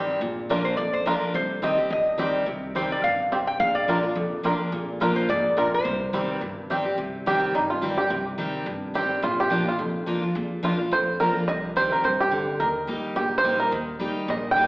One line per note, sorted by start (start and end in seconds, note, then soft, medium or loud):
0.00 0.19 G2 medium
0.00 0.20 D#3 medium
0.00 0.21 G3 medium
0.00 0.21 C4 medium
0.00 0.21 G4 loud
0.21 0.59 A#1 medium
0.21 0.75 A#2 medium
0.49 0.77 F3 medium
0.49 0.77 A#3 medium
0.49 0.57 D4 medium
0.49 0.77 D4 medium
0.49 0.77 F4 medium
0.49 0.57 F4 medium
0.49 0.65 A#4 medium
0.49 0.57 A#4 medium
0.65 0.76 C5 medium
0.77 1.15 F1 medium
0.77 1.32 F2 medium
0.77 0.93 D5 loud
0.93 1.06 C5 loud
1.06 1.33 F3 medium
1.06 1.33 A#3 medium
1.06 1.14 D4 medium
1.06 1.34 D4 medium
1.06 1.34 F4 loud
1.06 1.14 F4 medium
1.06 1.35 A#4 medium
1.06 1.14 A#4 medium
1.34 1.72 C2 loud
1.34 1.88 C3 medium
1.34 1.64 C5 loud
1.62 1.77 D#3 medium
1.62 1.78 G3 medium
1.62 1.70 C4 medium
1.62 1.78 C4 loud
1.62 1.77 G4 medium
1.62 1.66 G4 medium
1.62 1.90 D#5 loud
1.78 1.91 C4 soft
1.78 1.90 G4 medium
1.90 2.28 G1 medium
1.90 2.44 G2 medium
1.90 2.32 D#5 loud
2.18 2.45 D#3 medium
2.18 2.45 G3 medium
2.18 2.46 C4 loud
2.18 2.26 C4 medium
2.18 2.46 G4 medium
2.18 2.22 G4 medium
2.46 2.85 C2 medium
2.46 3.01 C3 medium
2.75 3.02 D#3 medium
2.75 3.02 G3 medium
2.75 2.82 C4 medium
2.75 3.03 C4 loud
2.75 2.78 G4 medium
2.75 3.03 G4 medium
2.75 2.92 C5 medium
2.92 3.04 D5 medium
3.04 3.41 G1 medium
3.04 3.31 G2 medium
3.04 3.47 F5 loud
3.32 3.59 C3 medium
3.32 3.39 C4 medium
3.32 3.34 G4 medium
3.47 3.59 G5 loud
3.60 3.97 A#1 loud
3.60 4.14 A#2 medium
3.60 3.76 F5 loud
3.75 4.56 D5 medium
3.88 4.03 F3 medium
3.88 4.03 A#3 medium
3.88 4.03 D4 medium
3.88 3.95 D4 medium
3.88 4.01 F4 loud
3.88 3.95 F4 medium
3.88 3.96 A#4 medium
4.03 4.16 D4 soft
4.03 4.15 F4 medium
4.15 4.54 F1 medium
4.15 4.70 F2 medium
4.43 4.71 F3 medium
4.43 4.71 A#3 medium
4.43 4.71 D4 loud
4.43 4.52 D4 medium
4.43 4.71 F4 medium
4.43 4.52 F4 medium
4.43 4.52 A#4 medium
4.72 5.10 A#1 medium
4.72 5.26 A#2 medium
5.00 5.27 F3 medium
5.00 5.28 A#3 medium
5.00 5.08 D4 medium
5.00 5.28 D4 medium
5.00 5.08 F4 medium
5.00 5.28 F4 medium
5.00 5.17 A#4 medium
5.00 5.08 A#4 medium
5.16 5.29 C5 loud
5.29 5.66 F1 medium
5.29 5.56 G#2 medium
5.29 5.55 D5 loud
5.57 5.84 A#2 medium
5.57 5.64 D4 medium
5.57 5.64 F4 medium
5.57 5.72 A#4 medium
5.57 5.64 A#4 medium
5.74 6.39 C5 medium
5.85 6.23 C2 loud
5.85 6.39 C3 medium
6.13 6.40 D#3 medium
6.13 6.40 G3 loud
6.13 6.21 C4 medium
6.13 6.41 C4 medium
6.13 6.41 G4 medium
6.13 6.16 G4 medium
6.39 6.79 G1 medium
6.39 6.95 G2 medium
6.39 6.67 A#4 medium
6.70 6.85 D#3 medium
6.70 6.85 G3 medium
6.70 6.77 C4 medium
6.70 6.85 C4 medium
6.70 6.73 G4 medium
6.70 6.84 G4 loud
6.85 6.98 C4 soft
6.85 6.97 G4 medium
6.98 7.36 C2 medium
6.98 7.52 C3 medium
7.26 7.53 D#3 medium
7.26 7.53 G3 medium
7.26 7.54 C4 loud
7.26 7.56 G4 loud
7.26 7.54 G4 medium
7.54 7.92 G1 medium
7.54 8.08 G2 medium
7.54 7.71 D#4 medium
7.70 7.96 F4 medium
7.82 7.97 D#3 medium
7.82 7.97 G3 medium
7.82 7.98 C4 medium
7.82 7.96 G4 loud
7.97 8.11 C4 soft
7.97 8.10 G4 medium
7.97 8.24 G4 loud
8.10 8.48 C2 loud
8.10 8.64 C3 medium
8.38 8.65 D#3 medium
8.38 8.65 G3 loud
8.38 8.66 C4 medium
8.38 8.66 G4 medium
8.66 9.04 G1 medium
8.66 9.20 G2 medium
8.94 9.21 D#3 medium
8.94 9.22 G3 medium
8.94 9.22 C4 medium
8.94 9.21 G4 loud
8.94 9.22 G4 medium
9.22 9.60 A#1 loud
9.22 9.77 A#2 medium
9.22 9.39 F4 loud
9.40 9.68 G4 loud
9.50 9.66 F3 medium
9.50 9.66 A#3 medium
9.50 9.66 D4 loud
9.50 9.64 F4 medium
9.65 9.79 D4 soft
9.65 9.78 F4 medium
9.65 9.94 F4 medium
9.79 10.17 F1 medium
9.79 10.33 F2 medium
10.06 10.22 F3 medium
10.06 10.22 A#3 medium
10.06 10.22 D4 medium
10.06 10.20 F4 medium
10.21 10.35 D4 medium
10.21 10.34 F4 medium
10.35 10.73 A#1 loud
10.35 10.89 A#2 medium
10.63 10.78 F3 medium
10.63 10.78 A#3 medium
10.63 10.79 D4 medium
10.63 10.77 F4 medium
10.63 10.93 F4 medium
10.78 10.92 D4 soft
10.78 10.91 F4 medium
10.91 11.29 F1 medium
10.91 11.45 F2 medium
10.91 11.18 C5 medium
11.20 11.35 F3 medium
11.20 11.35 A#3 medium
11.20 11.35 D4 medium
11.20 11.34 F4 loud
11.20 11.47 A#4 medium
11.35 11.48 D4 soft
11.35 11.47 F4 medium
11.48 11.85 C2 medium
11.48 12.02 C3 medium
11.48 11.77 D#5 loud
11.76 12.03 D#3 medium
11.76 12.03 G3 medium
11.76 12.03 C4 loud
11.76 12.04 G4 loud
11.76 11.91 C5 loud
11.92 12.05 A#4 medium
12.04 12.42 G2 medium
12.04 12.31 C3 medium
12.04 12.20 C5 medium
12.21 12.62 G4 loud
12.31 12.59 D3 medium
12.60 12.98 D#2 loud
12.60 13.14 D#3 medium
12.60 12.86 A#4 medium
12.87 13.15 G3 medium
12.87 13.15 A#3 medium
12.87 13.15 D#4 medium
12.87 13.16 G4 medium
13.16 13.54 A#1 medium
13.16 13.70 A#2 medium
13.16 13.39 G4 medium
13.38 13.58 C5 loud
13.44 13.71 G3 medium
13.44 13.71 A#3 medium
13.44 13.71 D#4 medium
13.44 13.72 G4 loud
13.60 13.71 A#4 medium
13.72 14.10 D#2 medium
13.72 14.26 D#3 medium
14.00 14.27 G3 medium
14.00 14.27 A#3 medium
14.00 14.28 D#4 medium
14.00 14.28 G4 medium
14.28 14.66 A#1 medium
14.28 14.67 A#2 loud
14.28 14.52 D#5 medium
14.51 14.67 G5 loud
14.56 14.67 G3 medium
14.56 14.67 A#3 medium
14.56 14.67 D#4 medium
14.56 14.67 G4 loud